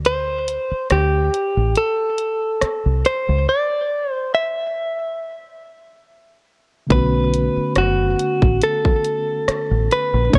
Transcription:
Already playing: D2
0.05 C5, closed hi-hat
0.48 closed hi-hat
0.71 muted fingered electric bass stroke
0.90 D2 G4, cross-stick, closed hi-hat
1.34 closed hi-hat
1.57 A1
1.76 A4, closed hi-hat
2.18 closed hi-hat
2.62 muted fingered electric bass stroke, cross-stick, closed hi-hat
2.86 C2
3.05 C5, closed hi-hat
3.29 C#2
3.49 D5
4.12 C5
4.34 E5
6.87 B1 C#3 A3 B3, kick, closed hi-hat
6.92 D3 C#4 F#4 B4
7.34 closed hi-hat
7.57 muted fingered electric bass stroke
7.76 F#1 F#4, cross-stick, closed hi-hat
8.20 closed hi-hat
8.42 A1, kick
8.62 A4, closed hi-hat
8.85 kick
9.04 closed hi-hat
9.48 muted fingered electric bass stroke, cross-stick, closed hi-hat
9.71 A1
9.91 B4, closed hi-hat
10.14 A#1
10.30 B1 A3 B3 D4, kick, closed hi-hat
10.35 C#5

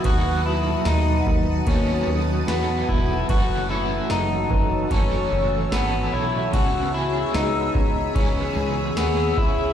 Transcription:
Already playing: F#4 B4 A5 D#6
0.04 D#2 F#3 B3 F#4, kick, ride
0.08 D#4 A4
0.46 E4
0.85 D#2 D#4, snare, ride, tambourine
1.26 D#2, kick
1.67 D#2 F#3 B3 C#4 D#4 A4, kick, ride
2.07 D#2
2.47 E2 F#3 B3 D#4 A4, snare, ride, tambourine
2.89 E1 E4, kick
3.29 F#1 F#2 C#3 E3 A3 C#4 F#4 A4 C#5 E6, kick, ride
3.68 A3 C#4 E4 A4
3.73 E3
4.10 F#1 D#4, snare, ride, tambourine
4.51 F#1 B4, kick
4.90 F#1 E3 A3 C#4 A4, kick, ride
5.32 F#1
5.71 G#1 E3 A3 B3 C#4, snare, ride, tambourine
5.75 A4
6.13 B1 E4 C#5
6.38 E5
6.53 C#2 C#3 E3 B3 C#4 F#4 G#4 C#5 B5, kick, ride
6.93 B3 C#4 E4 G#4
7.33 C#2 D#4 B4, snare, ride, tambourine
7.75 C#2, kick
8.14 C#2 E3 B3 C#4, kick, ride
8.19 G#4
8.56 C#2
8.97 D#2 B3 C#4 G#4, snare, ride, tambourine
9.37 C#2 E4, kick

